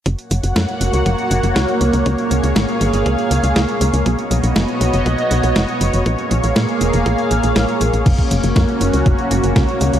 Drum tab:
CC |----------------|----------------|----------------|----------------|
HH |xxxxxxxxxxxxxxxx|xxxxxxxxxxxxxxxx|xxxxxxxxxxxxxxxx|xxxxxxxxxxxxxxxx|
SD |----o-------o---|----o-------o---|----o-------o---|----o-------o---|
BD |o---o---o---o---|o---o---o---o---|o---o---o---o---|o---o---o-------|

CC |x---------------|
HH |xxxxxxxxxxxxxxxx|
SD |----o-------o---|
BD |oo--o---o---o---|